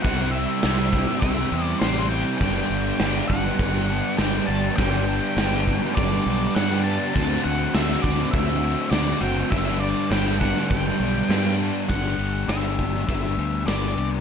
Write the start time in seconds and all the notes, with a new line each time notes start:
0.02 C2 C3 G3 C4 E4 G4 F#5, kick, crash
0.31 E4 G4 E5, crash
0.36 C4
0.62 C2 C3 G3 C4 E4 G4, snare, crash
0.92 G3 C4 E4, kick, crash
1.21 C2 C3 G3 C4 E4 E5, kick, crash
1.51 E2 C4 E4 G4, crash
1.65 D5
1.79 A1 G3 C4 E4 G4 C5, snare, crash
2.09 E4 G4 G5, crash
2.13 G3 C4
2.38 G1 G2 D3 G3 B3 G5, kick, crash
2.42 D4 G4
2.70 G1 G3 B3 D4 G4, crash
2.99 G1 D3 G3 B3 D4 G4, snare, crash
3.28 G1 B3 D4 F#5, kick, crash
3.33 G3
3.59 G1 G2 D3 G3 B3 D4, kick, crash
3.89 G3 B3 D4 G4, crash
4.17 G1 G3 B3 D4 G4 G5, snare, crash
4.47 G1 B3 D4 G4 A5, crash
4.51 G3
4.76 G1 G2 D3 G3 B3 D4 G4 G5, kick, crash
5.07 G3 B3 D4 G4, crash
5.36 G1 D3 G3 B3 D4 G4, snare, crash
5.66 G3 B3 D4, kick, crash
5.95 G1 G2 D3 G3 B3 D4 D5, kick, crash
6.26 B1 G3 B3 D4 G4, crash
6.55 G2 G3 B3 D4 G4 F#5, snare, crash
6.84 G3 B3 D4 G4 A5, crash
7.14 D2 D3 A3 C4 F#4 A5, kick, crash
7.43 D2 A3 C4 F#4 F#5, crash
7.73 D2 D3 A3 C4 F#4 E5, snare, crash
8.02 D2 A3 C4 F#4 D5, kick, crash
8.19 snare
8.31 D2 D3 A3 C4 F#4 E5, kick, crash
8.61 A3 C4 F#4, crash
8.90 D2 D3 A3 C4 F#4 D5, snare, crash
9.20 F#1 A3 C4 F#4 G5, crash
9.50 G1 G2 D3 G3 B3 D4 E5, kick, crash
9.80 G3 B3 D4 D5, crash
10.10 G1 D3 G3 B3 D4 G5, snare, crash
10.40 G3 B3 D4 F#5, kick, crash
10.56 snare
10.70 G1 G2 D3 G3 B3 D4 G5, kick, crash
10.99 B1 G3 B3 D4, crash
11.29 G2 D3 G3 B3 D4, snare, crash
11.58 G3 B3 D4, crash
11.88 G1 G3 B3 D4 G4 F#5, kick, crash
12.18 G1 B3 D4 G4, ride
12.48 G1 G3 B3 D4 G4 E5, snare, ride
12.77 B3 D4 G4, kick, ride
12.94 snare
13.07 G1 G3 B3 D4 G4 E5, kick, ride
13.36 D2 B3 D4 G4, ride
13.65 G1 G3 B3 D4 G4 D5, snare, ride
13.96 C2 B3 D4 G4, ride